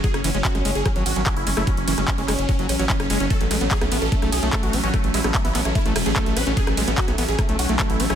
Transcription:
<<
  \new Staff \with { instrumentName = "Supersaw synth" } { \time 4/4 \key a \major \tempo 4 = 147 gis'16 cis'16 cis'16 cis'16 fis'16 cis'16 cis'16 gis'16 cis'16 cis'16 fis'16 cis'16 cis'16 e'16 cis'16 e'16 | cis'16 cis'16 cis'16 cis'16 cis'16 cis'16 cis'16 cis'16 cis'16 cis'16 cis'16 cis'16 cis'16 cis'16 cis'16 cis'16 | a'16 a16 a16 a16 gis'16 a16 a16 a'16 a16 a16 gis'16 a16 r16 fis'16 a16 fis'16 | a16 a16 e'16 a16 a16 e'16 a16 a16 e'16 a16 a16 gis'16 a16 a16 b'16 a16 |
gis'16 a16 a16 a16 fis'16 a16 a16 gis'16 a16 a16 fis'16 a16 a16 e'16 a16 e'16 | }
  \new Staff \with { instrumentName = "Ambient pad" } { \time 4/4 \key a \major <fis cis'>1~ | <fis cis'>1~ | <fis cis'>1~ | <fis cis'>1~ |
<fis cis'>1 | }
  \new Staff \with { instrumentName = "Acid bass" } { \time 4/4 \key a \major fis16 r16 e16 gis16 r16 gis16 gis16 r16 fis16 fis16 r16 fis16 fis16 r16 gis16 a16 | fis16 r16 e16 gis16 r16 gis16 gis16 r16 fis16 fis16 r16 fis16 e16 r16 gis16 cis'16 | a16 r16 gis16 b16 r16 b16 b16 r16 a16 a16 r16 a16 a8 cis'16 cis'16 | a16 r16 gis16 b16 r16 b16 b16 r16 a16 a16 r16 a16 a8 cis'16 cis'16 |
a16 r16 gis16 b16 r16 b16 b16 r16 a16 a16 r16 a16 a8 cis'16 cis'16 | }
  \new Staff \with { instrumentName = "Analog synth bass" } { \clef bass \time 4/4 \key a \major r16 fis,,16 fis,,16 fis,,16 r16 gis,,16 fis,,16 fis,,16 r16 gis,,16 gis,,16 gis,,16 r16 fis,,16 fis,,16 fis,,16 | r16 fis,,16 fis,,16 fis,,16 r16 fis,,16 fis,,16 fis,,16 r16 fis,,16 a,,16 a,,16 r16 fis,,16 fis,,16 fis,,16 | r16 a,,16 a,,16 a,,16 r16 b,,16 a,,16 a,,16 r16 b,,16 b,,16 b,,16 r16 a,,16 a,,16 a,,16 | r16 a,,16 a,,16 a,,16 r16 a,,16 a,,16 a,,16 r16 a,,16 e,,16 a,,16 r16 a,,16 a,,16 a,,16 |
r16 a,,16 a,,16 a,,16 r16 b,,16 a,,16 a,,16 r16 b,,16 b,,16 b,,16 r16 a,,16 a,,16 a,,16 | }
  \new DrumStaff \with { instrumentName = "Drums" } \drummode { \time 4/4 <hh bd>16 <hh ss>16 <hho cymr>16 hh16 <hc hh bd>16 <hh ss>16 <hho cymr>16 hh16 <hh bd ss>16 hh16 <hho cymr>16 hh16 <hc hh bd ss>16 hh16 <hho cymr>16 <hh ss>16 | <hh bd>16 hh16 <hho cymr>16 <hh ss>16 <hc hh bd>16 hh16 <hc hho cymr ss>16 hh16 <hh bd>16 hh16 <hho cymr ss>16 hh16 <hc hh bd>16 <hh ss>16 <hho cymr>16 hh16 | <hh bd>16 hh16 <hho cymr ss>16 hh16 <hc hh bd>16 <hh ss>16 <hho cymr>16 hh16 <hh bd>16 <hh ss>16 <hho cymr>16 hh16 <hc hh bd ss>16 hh16 <hho cymr>16 hh16 | <hh bd ss>16 hh16 <hho cymr>16 <hh ss>16 <hc hh bd>16 hh16 <hc hho cymr>16 <hh ss>16 <hh bd>16 hh16 <hho cymr ss>16 hh16 <hc hh bd>16 hh16 <hho cymr ss>16 hh16 |
<hh bd>16 <hh ss>16 <hho cymr>16 hh16 <hc hh bd>16 <hh ss>16 <hho cymr>16 hh16 <hh bd ss>16 hh16 <hho cymr>16 hh16 <hc hh bd ss>16 hh16 <hho cymr>16 <hh ss>16 | }
>>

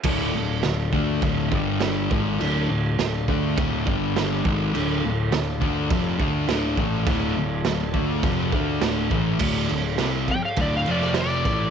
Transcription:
<<
  \new Staff \with { instrumentName = "Electric slide guitar" } { \time 4/4 \key d \minor \tempo 4 = 103 r1 | r1 | r1 | r1 |
r4. g''16 f''16 d''16 f''16 d''8 d''4 | }
  \new Staff \with { instrumentName = "Transistor combo organ" } { \time 4/4 \key d \minor <f' a' d''>2~ <f' a' d''>8 <d' g' d''>4 <f' a' d''>8~ | <f' a' d''>2~ <f' a' d''>8 <d' g' d''>4 <f' a' d''>8~ | <f' a' d''>1~ | <f' a' d''>2.~ <f' a' d''>8 r8 |
<f' a' d''>2~ <f' a' d''>8 <f' c'' f''>4 <f' a' d''>8 | }
  \new Staff \with { instrumentName = "Distorted electric guitar" } { \clef bass \time 4/4 \key d \minor <d, a, d>8 <d, a,>8 <d, a,>8 <d a d'>8 <d, a, d>8 <g, d g>4 <gis, ees gis>8 | <d, a, d>8 <d, a,>8 <d, a,>8 <d a d'>8 <d, a, d>8 <g, d g>4 <gis, ees gis>8 | <d, a, d>8 <d, a,>8 <d, a,>8 <d a d'>8 <f, c f>8 <d a d'>8 <d, a, d>8 <a, e a>8 | <d, a, d>8 <d, a,>8 <d, a,>8 <d a d'>8 <f, c f>8 <d a d'>8 <d, a, d>8 <a, e a>8 |
<d, a, d>8 <d, a,>8 <c g c'>8 r8 <d, a, d>8 <f, c f>4 <a, e a>8 | }
  \new Staff \with { instrumentName = "Picked electric bass" } { \clef bass \time 4/4 \key d \minor d,,8 d,,8 d,,8 d,8 d,,8 g,,4 gis,,8 | d,,8 d,,8 d,,8 d,8 d,,8 g,,4 gis,,8 | d,,8 d,,8 d,,8 d,8 f,,8 d,8 d,,8 a,,8 | d,,8 d,,8 d,,8 d,8 f,,8 d,8 d,,8 a,,8 |
d,,8 d,,8 c,8 r8 d,,8 f,,4 a,,8 | }
  \new DrumStaff \with { instrumentName = "Drums" } \drummode { \time 4/4 <cymc bd>4 <cymc sn>8 bd8 <cymc bd>8 bd8 <cymc sn>8 bd8 | cymc4 <cymc sn>8 bd8 <cymc bd>8 bd8 <cymc sn>8 bd8 | cymc4 <cymc sn>8 bd8 <cymc bd>8 bd8 <cymc sn>8 bd8 | <cymc bd>4 <cymc sn>8 bd8 <cymc bd>8 bd8 <cymc sn>8 bd8 |
<cymc bd>8 cymc8 <cymc sn>8 <cymc bd>8 <cymc bd>8 cymc16 sn16 <cymc sn>8 <cymc bd>8 | }
>>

